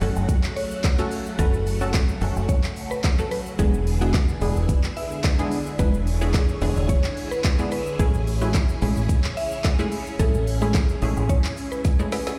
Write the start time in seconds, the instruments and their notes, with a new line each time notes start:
Already playing: string machine C#3 F#3 A3 F#4
0.01 fingered electric bass F#1, synth stab F#3 A3 C#4 F#4 A4, open hi-hat, shaker
0.16 fingered electric bass F#1, shaker
0.29 kick, closed hi-hat, shaker
0.43 clap, shaker
0.56 synth pluck C#5, open hi-hat, shaker
0.71 shaker
0.84 kick, snare, clap, closed hi-hat, shaker
0.98 synth stab F#3 A3 C#4 F#4 A4, shaker
1.11 open hi-hat, shaker
1.26 shaker
1.39 fingered electric bass F#1, synth stab F#3 A3 C#4 F#4 B4, synth pluck A4, kick, closed hi-hat, shaker
1.54 shaker
1.66 open hi-hat, shaker
1.81 synth stab F#3 A3 C#4 F#4 A4, synth pluck F#4, shaker
1.94 kick, snare, clap, closed hi-hat, shaker
2.08 shaker
2.21 fingered electric bass F#1, synth stab F#3 A3 C#4 F#4 A4, open hi-hat, shaker
2.36 fingered electric bass F#1, shaker
2.49 synth pluck C#5, kick, closed hi-hat, shaker
2.64 clap, shaker
2.76 open hi-hat, shaker
2.91 synth pluck B4, shaker
3.04 kick, snare, clap, closed hi-hat, shaker
3.18 synth stab F#3 A3 C#4 F#4 A4, shaker
3.31 synth pluck B4, open hi-hat, shaker
3.46 shaker
3.59 fingered electric bass E1, string machine D3 B3 E4 G#4, synth stab G#3 B3 D4 E4 G#4, synth pluck G#4, kick, closed hi-hat, shaker
3.74 shaker
3.87 open hi-hat, shaker
4.01 synth stab G#3 B3 D4 E4 G#4, synth pluck F#4, shaker
4.14 kick, snare, clap, closed hi-hat, shaker
4.28 shaker
4.41 fingered electric bass E1, synth stab G#3 B3 D4 E4 G#4, open hi-hat, shaker
4.56 fingered electric bass E1, shaker
4.69 kick, closed hi-hat, shaker
4.84 clap, shaker
4.97 synth pluck E5, open hi-hat, shaker
5.11 shaker
5.24 kick, snare, clap, closed hi-hat, shaker
5.39 synth stab G#3 B3 D4 E4 G#4, shaker
5.51 open hi-hat, shaker
5.66 shaker
5.79 fingered electric bass E1, synth stab G#3 B3 D4 E4 B4, synth pluck B4, string machine C#5, kick, closed hi-hat, shaker
5.94 shaker
6.07 open hi-hat, shaker
6.21 synth stab G#3 B3 D4 E4 G#4, synth pluck G#4, shaker
6.34 kick, snare, clap, closed hi-hat, shaker
6.48 shaker
6.61 fingered electric bass E1, synth stab G#3 B3 D4 E4 G#4, open hi-hat, shaker
6.76 fingered electric bass E1, shaker
6.89 synth pluck C#5, kick, closed hi-hat, shaker
7.04 clap, shaker
7.17 open hi-hat, shaker
7.31 synth pluck B4, shaker
7.44 kick, snare, clap, closed hi-hat, shaker
7.59 synth stab G#3 B3 D4 E4 G#4, shaker
7.71 synth pluck B4, open hi-hat, shaker
7.86 shaker
7.99 fingered electric bass A1, string machine C#3 C#4, synth stab G#3 A3 C#4 E4 G#4, synth pluck G#4, kick, closed hi-hat, shaker
8.14 shaker
8.27 open hi-hat, shaker
8.41 synth stab G#3 A3 C#4 E4 G#4, synth pluck F#4, shaker
8.54 kick, snare, clap, closed hi-hat, shaker
8.69 shaker
8.82 fingered electric bass A1, synth stab G#3 A3 C#4 E4 G#4, open hi-hat, shaker
8.96 fingered electric bass A1, shaker
9.09 kick, closed hi-hat, shaker
9.24 clap, shaker
9.37 synth pluck E5, open hi-hat, shaker
9.51 shaker
9.64 kick, snare, clap, closed hi-hat, shaker
9.79 synth stab G#3 A3 C#4 E4 G#4, shaker
9.92 open hi-hat, shaker
10.07 shaker
10.19 fingered electric bass A1, synth stab G#3 A3 C#4 E4 G#4, synth pluck A4, kick, closed hi-hat, shaker
10.34 shaker
10.47 open hi-hat, shaker
10.61 synth stab G#3 A3 C#4 E4 G#4, synth pluck G#4, shaker
10.74 kick, snare, clap, closed hi-hat, shaker
10.89 shaker
11.02 fingered electric bass A1, synth stab G#3 A3 C#4 E4 G#4, open hi-hat, shaker
11.17 fingered electric bass A1, shaker
11.29 synth pluck C#5, kick, closed hi-hat, shaker
11.44 clap, shaker
11.57 open hi-hat, shaker
11.72 synth pluck B4, shaker
11.85 kick, snare, closed hi-hat, shaker
11.99 synth stab G#3 A3 C#4 E4 G#4, shaker
12.12 synth pluck B4, snare, open hi-hat, shaker
12.27 snare, shaker